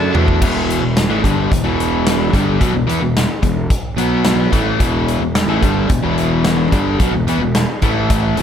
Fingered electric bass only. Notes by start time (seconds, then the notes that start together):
Already playing: F#2
0.14 E2
0.41 E1
0.83 E1
1.09 A1
1.24 G1
1.51 E1
1.63 E1
2.33 G1
2.60 B1
2.73 E1
2.87 E2
3.00 E1
3.43 E1
3.97 B1
4.52 A1
4.80 E1
5.20 E1
5.46 A1
5.62 G1
5.90 E1
6.01 E1
6.72 G1
7.00 B1
7.11 E1
7.25 E2
7.38 E1
7.82 A1
8.36 E1